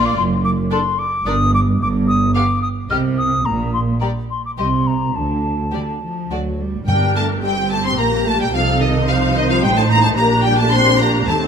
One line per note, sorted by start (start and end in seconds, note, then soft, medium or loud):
0.00 0.14 A#1 medium
0.00 0.14 A#2 medium
0.00 0.17 A#3 medium
0.00 0.17 F4 medium
0.00 0.17 D5 medium
0.05 0.17 D6 medium
0.17 0.62 F#1 medium
0.17 0.62 F#2 medium
0.17 0.23 C6 medium
0.44 0.50 D6 medium
0.71 0.79 D4 soft
0.71 0.79 A4 soft
0.71 0.79 D5 soft
0.71 1.00 C6 medium
0.98 1.27 D6 medium
1.25 1.71 G1 medium
1.25 1.71 G2 medium
1.25 1.34 D4 medium
1.25 1.34 A#4 medium
1.25 1.34 D5 medium
1.25 1.53 D#6 medium
1.54 1.60 D6 medium
1.80 2.26 G1 medium
1.80 2.26 G2 medium
1.80 1.88 D6 medium
2.08 2.34 D#6 medium
2.34 2.43 B3 soft
2.34 2.44 G4 soft
2.34 2.43 F5 medium
2.34 2.61 D6 medium
2.62 2.68 D#6 medium
2.90 3.36 C2 medium
2.90 3.36 C3 medium
2.90 2.98 G3 soft
2.90 2.99 G4 soft
2.90 2.98 D#5 soft
2.90 2.96 F6 medium
3.18 3.46 D#6 medium
3.45 3.92 A#1 medium
3.45 3.92 A#2 medium
3.45 3.73 A#5 medium
3.73 3.80 C6 medium
4.01 4.10 G3 soft
4.01 4.10 G4 soft
4.01 4.09 D5 soft
4.01 4.07 A#5 medium
4.30 4.44 C6 medium
4.45 4.51 D6 medium
4.57 5.05 C2 soft
4.57 5.06 C3 soft
4.57 4.66 G3 soft
4.57 4.65 G4 soft
4.57 4.67 D#5 soft
4.57 4.88 C6 medium
4.87 5.17 A#5 soft
5.15 5.64 D2 soft
5.15 5.63 D3 soft
5.15 6.31 A5 soft
5.72 6.00 D3 soft
5.72 5.82 G3 soft
5.72 5.80 G4 soft
5.72 5.82 D5 soft
6.02 6.30 F3 soft
6.30 6.78 D2 soft
6.30 6.59 F#3 soft
6.30 6.40 A3 soft
6.30 6.39 F#4 soft
6.30 6.39 D5 soft
6.60 6.88 G3 soft
6.87 7.95 G1 soft
6.87 7.95 G2 soft
6.87 7.67 G2 medium
6.87 7.15 G3 medium
6.87 7.40 D4 soft
6.87 7.40 A#4 soft
6.87 6.95 G5 soft
6.87 7.14 G5 medium
7.16 7.29 A3 medium
7.16 7.24 A5 soft
7.16 7.25 A5 medium
7.42 7.55 G3 medium
7.42 7.99 C4 soft
7.42 8.55 G4 soft
7.42 7.71 G5 medium
7.71 7.77 A3 medium
7.71 7.85 A5 medium
7.84 7.98 C4 medium
7.84 7.99 C6 medium
7.84 7.92 C6 medium
7.97 8.54 A#1 medium
7.97 8.54 A#2 soft
7.97 8.26 A#3 medium
7.97 8.54 A#3 soft
7.97 8.06 A#5 medium
7.97 8.27 A#5 medium
8.24 8.39 A3 medium
8.24 8.41 A5 medium
8.24 8.40 A5 medium
8.38 8.45 G3 medium
8.38 8.54 G5 medium
8.38 8.47 G5 medium
8.51 9.62 C2 medium
8.51 9.62 C3 medium
8.51 8.80 F3 medium
8.51 10.18 D#4 medium
8.51 8.62 F5 medium
8.51 8.82 F5 medium
8.55 9.09 A4 medium
8.80 9.08 D#3 medium
8.80 8.89 D#5 medium
8.80 9.09 D#5 medium
9.09 9.36 F3 medium
9.09 10.16 C5 medium
9.09 9.17 F5 medium
9.09 9.37 F5 medium
9.36 9.51 D#3 medium
9.36 9.50 D#5 medium
9.50 9.64 F3 medium
9.50 9.63 F5 medium
9.50 9.56 F5 medium
9.62 10.17 A1 medium
9.62 10.18 A2 medium
9.62 9.77 G3 medium
9.62 9.77 G5 medium
9.62 9.69 G5 medium
9.76 9.82 A3 medium
9.76 9.83 A5 medium
9.76 9.91 A5 medium
9.90 10.04 A#3 medium
9.90 10.04 A#5 medium
10.03 10.08 A5 medium
10.03 10.09 A5 medium
10.07 10.12 A3 medium
10.15 11.24 A#1 medium
10.15 11.25 A#2 medium
10.15 11.27 D4 medium
10.15 11.47 G4 medium
10.15 10.43 A#5 medium
10.15 10.25 A#5 medium
10.20 10.31 A#3 medium
10.43 10.52 G3 medium
10.43 10.57 G5 medium
10.43 10.58 G5 medium
10.57 10.72 A3 medium
10.57 10.71 A5 medium
10.71 10.99 C4 medium
10.71 10.99 C6 medium
10.71 11.00 C6 medium
11.00 11.28 A#3 medium
11.00 11.27 A#5 medium
11.00 11.09 A#5 medium
11.26 11.47 D#2 medium
11.26 11.47 A3 medium
11.26 11.47 C4 soft
11.26 11.47 A5 medium
11.26 11.38 A5 medium